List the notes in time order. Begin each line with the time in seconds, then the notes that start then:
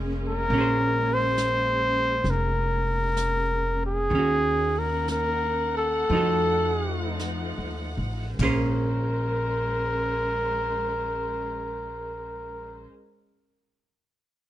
Already playing: F1 C#3 G#3 A#3 C#4 G#4 C5
0.27 A#4
0.50 A#1 A#3 C#4, brush sweep
0.58 G#4 C5
1.14 C5
1.38 snare, hi-hat pedal
2.24 F1, brush sweep, snare
2.30 A#4
3.17 snare, hi-hat pedal
3.86 G#4
4.10 D#2 D#3 A#3 C#4 F#5, brush sweep
4.15 C#4 F#4
4.78 A#4
5.08 A#4, snare, hi-hat pedal
5.77 A4
6.09 F2 F3 A3 D#4, brush sweep
6.15 F#4 A4
7.19 snare, hi-hat pedal
7.58 D#2
7.97 A1
8.36 A#1 G#3 C#4 A#4 C5, kick, floor tom, crash
8.41 A#3 C#4 G#4 A#4 C5